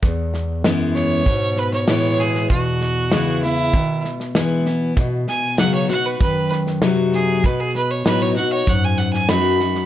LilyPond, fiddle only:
\new Staff \with { instrumentName = "Fiddle" } { \time 4/4 \key e \major \tempo 4 = 97 r4. cis''4 b'16 cis''16 cis''8 gis'8 | fis'4. e'4 r4. | r8 gis''8 fis''16 cis''16 fis''16 b'16 b'8 r4 gis'8 | b'16 gis'16 b'16 cis''16 b'16 cis''16 fis''16 cis''16 fis''16 gis''16 fis''16 gis''16 b''4 | }